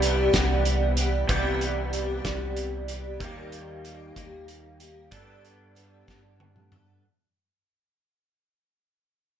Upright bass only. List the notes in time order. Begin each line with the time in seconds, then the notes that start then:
Already playing: C2
0.34 C2
1.29 C2
2.25 C2
3.21 D#2
4.16 D#2
5.11 G2
6.08 G2